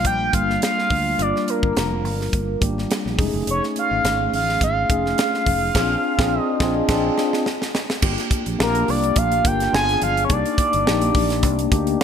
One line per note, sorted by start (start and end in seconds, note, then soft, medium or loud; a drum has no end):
0.00 0.32 G3 medium
0.00 0.33 A#3 medium
0.00 0.33 D4 medium
0.00 0.33 F4 medium
0.04 0.28 A#1 medium
0.04 0.32 G5 loud
0.04 kick medium
0.04 closed hi-hat medium
0.04 muted conga soft
0.04 high conga medium
0.32 0.56 G1 medium
0.32 1.12 G3 medium
0.32 1.12 A#3 medium
0.32 1.12 D4 medium
0.32 1.12 F4 medium
0.32 0.61 F5 medium
0.32 kick loud
0.32 closed hi-hat medium
0.32 muted conga soft
0.32 high conga medium
0.50 snare soft
0.61 1.23 F5 loud
0.61 snare medium
0.61 closed hi-hat medium
0.61 muted conga soft
0.79 snare soft
0.90 1.13 D2 medium
0.90 kick medium
0.90 open hi-hat medium
0.90 muted conga soft
0.90 low conga medium
1.18 1.31 G1 loud
1.18 2.24 G3 medium
1.18 2.24 A#3 medium
1.18 2.24 D4 medium
1.18 2.24 F4 medium
1.18 1.51 D5 loud
1.18 closed hi-hat medium
1.18 muted conga soft
1.36 snare soft
1.47 2.63 A#4 medium
1.47 closed hi-hat medium
1.47 muted conga soft
1.47 high conga soft
1.63 1.74 G1 medium
1.63 kick loud
1.75 2.04 F1 medium
1.75 snare loud
1.75 closed hi-hat medium
1.75 muted conga soft
1.91 high conga medium
2.04 2.27 G1 medium
2.04 open hi-hat medium
2.04 low conga medium
2.21 snare soft
2.33 2.56 G1 medium
2.33 kick medium
2.33 closed hi-hat medium
2.33 muted conga soft
2.33 high conga medium
2.60 2.84 G#1 medium
2.60 3.18 G3 medium
2.60 3.18 A#3 medium
2.60 3.18 D4 medium
2.60 3.19 G4 medium
2.60 kick loud
2.60 closed hi-hat medium
2.60 muted conga soft
2.60 high conga medium
2.78 snare soft
2.89 snare loud
2.89 closed hi-hat medium
2.89 muted conga soft
3.05 3.16 A#1 medium
3.05 snare soft
3.17 3.31 F1 loud
3.17 3.25 G#3 medium
3.17 4.23 C#4 medium
3.17 4.24 D#4 medium
3.17 4.24 G#4 loud
3.17 kick loud
3.17 open hi-hat medium
3.17 low conga medium
3.24 4.26 A3 medium
3.34 3.44 F#1 loud
3.47 3.59 F1 loud
3.47 3.63 C#5 medium
3.47 closed hi-hat medium
3.63 snare soft
3.76 4.30 F5 loud
3.76 closed hi-hat medium
3.76 muted conga soft
3.76 high conga soft
3.91 4.01 G#1 medium
4.04 4.27 G#1 medium
4.04 snare medium
4.04 closed hi-hat medium
4.04 muted conga soft
4.19 high conga medium
4.33 4.56 A1 medium
4.33 4.60 F5 medium
4.33 open hi-hat medium
4.33 low conga medium
4.49 snare soft
4.61 4.84 G#1 loud
4.61 6.42 F5 loud
4.61 kick medium
4.61 closed hi-hat medium
4.61 muted conga soft
4.61 high conga medium
4.89 5.12 F1 medium
4.89 5.68 A3 medium
4.89 5.68 C#4 medium
4.89 5.69 D#4 medium
4.89 5.69 G#4 medium
4.89 kick loud
4.89 closed hi-hat medium
4.89 high conga medium
5.06 snare soft
5.18 snare loud
5.18 closed hi-hat medium
5.18 muted conga soft
5.34 snare soft
5.46 5.69 F1 medium
5.46 kick medium
5.46 open hi-hat medium
5.46 low conga medium
5.74 5.95 A#1 medium
5.74 5.94 C4 loud
5.74 5.95 F4 medium
5.74 5.95 G#4 medium
5.74 kick loud
5.74 snare loud
5.74 crash medium
5.81 5.98 D4 loud
6.18 6.38 A#1 loud
6.18 6.38 C4 medium
6.18 6.38 F4 medium
6.18 6.38 G#4 medium
6.18 kick loud
6.18 snare loud
6.25 6.42 D4 medium
6.42 7.43 D#5 loud
6.60 6.80 A#1 loud
6.60 6.80 C4 medium
6.60 6.80 D4 medium
6.60 6.80 F4 loud
6.60 6.81 G#4 loud
6.60 kick loud
6.60 snare loud
6.88 7.09 A#1 loud
6.88 7.08 C4 loud
6.88 7.08 D4 loud
6.88 7.09 F4 loud
6.88 7.09 G#4 loud
6.88 kick loud
6.88 snare loud
6.88 crash medium
7.18 snare medium
7.33 snare medium
7.46 snare medium
7.62 snare medium
7.75 snare loud
7.90 snare medium
8.02 8.15 G1 loud
8.02 8.55 A#3 medium
8.02 8.55 D4 medium
8.02 8.55 F4 medium
8.02 8.55 G4 medium
8.02 kick loud
8.02 crash loud
8.18 snare soft
8.18 closed hi-hat soft
8.31 kick loud
8.31 closed hi-hat medium
8.31 high conga medium
8.46 8.57 A#1 medium
8.46 closed hi-hat medium
8.59 8.82 A#1 medium
8.59 9.38 A#3 medium
8.59 9.38 D4 medium
8.59 9.38 F4 medium
8.59 9.39 G4 medium
8.59 8.91 A#4 medium
8.59 snare loud
8.75 closed hi-hat medium
8.75 high conga medium
8.88 9.11 C2 medium
8.88 9.19 D5 medium
8.88 open hi-hat medium
8.88 muted conga soft
8.88 low conga medium
9.04 closed hi-hat medium
9.16 9.39 A#1 medium
9.16 9.48 F5 loud
9.16 kick medium
9.16 closed hi-hat loud
9.16 high conga medium
9.32 closed hi-hat soft
9.44 9.68 G1 medium
9.44 9.73 A#3 medium
9.44 9.71 D4 medium
9.44 9.72 F4 medium
9.44 9.73 A#4 medium
9.44 9.74 G5 loud
9.44 kick loud
9.44 closed hi-hat loud
9.44 high conga medium
9.60 snare soft
9.60 closed hi-hat medium
9.72 9.96 G1 medium
9.72 10.25 B3 medium
9.72 10.25 D4 medium
9.72 10.25 F4 medium
9.72 10.26 G#4 medium
9.72 10.01 G#5 loud
9.72 snare loud
9.72 muted conga soft
9.89 snare soft
9.89 closed hi-hat soft
10.02 10.24 G1 medium
10.02 10.23 F5 loud
10.02 closed hi-hat medium
10.02 muted conga soft
10.02 low conga medium
10.17 closed hi-hat soft
10.25 10.34 C#5 medium
10.29 10.42 C2 loud
10.29 10.82 A#3 medium
10.29 10.82 D4 medium
10.29 10.82 D#4 medium
10.29 10.82 G4 medium
10.29 12.02 D5 medium
10.29 kick loud
10.29 closed hi-hat medium
10.46 closed hi-hat medium
10.58 kick loud
10.58 closed hi-hat medium
10.58 high conga medium
10.73 10.84 G1 medium
10.73 closed hi-hat medium
10.86 11.10 A#1 medium
10.86 11.65 A#3 medium
10.86 11.65 D4 medium
10.86 11.65 D#4 medium
10.86 11.65 G4 medium
10.86 snare loud
11.01 closed hi-hat medium
11.01 high conga medium
11.15 11.43 A#1 medium
11.15 kick loud
11.15 open hi-hat medium
11.15 muted conga soft
11.15 low conga medium
11.30 snare soft
11.30 closed hi-hat medium
11.43 11.66 C2 loud
11.43 kick medium
11.43 closed hi-hat medium
11.43 muted conga soft
11.43 high conga medium
11.59 closed hi-hat soft
11.71 11.94 D2 medium
11.71 12.04 A#3 medium
11.71 12.04 D4 medium
11.71 12.04 D#4 medium
11.71 12.04 G4 loud
11.71 kick loud
11.71 closed hi-hat medium
11.71 high conga medium
11.87 closed hi-hat medium